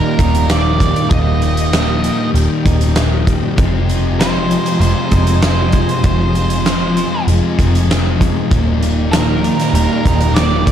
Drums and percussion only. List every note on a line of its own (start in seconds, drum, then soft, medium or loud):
0.19 kick medium
0.19 closed hi-hat medium
0.35 closed hi-hat medium
0.50 snare loud
0.50 closed hi-hat medium
0.80 kick medium
0.80 closed hi-hat medium
0.96 closed hi-hat medium
1.11 kick loud
1.11 closed hi-hat medium
1.42 closed hi-hat medium
1.57 closed hi-hat medium
1.73 snare loud
1.73 closed hi-hat medium
2.04 closed hi-hat medium
2.35 closed hi-hat medium
2.66 kick medium
2.66 closed hi-hat medium
2.81 closed hi-hat medium
2.96 snare loud
2.96 closed hi-hat medium
3.27 kick medium
3.27 closed hi-hat medium
3.58 kick loud
3.58 closed hi-hat medium
3.89 closed hi-hat medium
4.20 snare loud
4.20 closed hi-hat medium
4.51 closed hi-hat medium
4.66 closed hi-hat medium
4.81 closed hi-hat medium
5.12 kick medium
5.12 closed hi-hat medium
5.27 closed hi-hat medium
5.42 snare loud
5.42 closed hi-hat medium
5.72 kick medium
5.72 closed hi-hat medium
5.89 closed hi-hat medium
6.04 kick loud
6.04 closed hi-hat medium
6.35 closed hi-hat medium
6.50 closed hi-hat medium
6.66 snare loud
6.66 closed hi-hat medium
6.97 closed hi-hat medium
7.28 closed hi-hat medium
7.59 kick medium
7.59 closed hi-hat medium
7.75 closed hi-hat medium
7.91 snare loud
7.91 closed hi-hat medium
8.21 kick medium
8.21 closed hi-hat medium
8.51 kick loud
8.51 closed hi-hat medium
8.83 closed hi-hat medium
9.13 snare loud
9.13 closed hi-hat medium
9.44 closed hi-hat medium
9.60 snare soft
9.60 closed hi-hat medium
9.75 closed hi-hat medium
10.05 kick medium
10.05 closed hi-hat medium
10.21 closed hi-hat medium
10.36 snare loud
10.36 closed hi-hat medium
10.67 kick medium
10.67 closed hi-hat medium